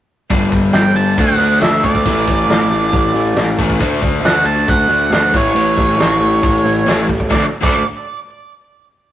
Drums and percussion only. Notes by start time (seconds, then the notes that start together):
0.30 kick, open hi-hat
0.52 kick, open hi-hat
0.73 snare, open hi-hat
0.96 open hi-hat
1.18 kick, open hi-hat
1.39 open hi-hat
1.61 snare, open hi-hat
1.84 kick, open hi-hat
1.95 kick
2.06 kick, open hi-hat
2.28 kick, open hi-hat
2.50 snare, open hi-hat
2.71 open hi-hat
2.93 kick, open hi-hat
3.16 open hi-hat
3.36 snare, open hi-hat
3.58 kick, open hi-hat
3.70 kick
3.81 kick, open hi-hat
4.02 kick, open hi-hat
4.25 snare, open hi-hat
4.47 open hi-hat
4.68 kick, open hi-hat
4.91 open hi-hat
5.12 snare, open hi-hat
5.34 kick, open hi-hat
5.56 open hi-hat
5.78 kick, open hi-hat
6.00 snare, open hi-hat
6.22 open hi-hat
6.43 kick, open hi-hat
6.66 open hi-hat
6.88 snare, open hi-hat
7.09 kick, open hi-hat
7.20 kick
7.31 kick, snare
7.63 kick, crash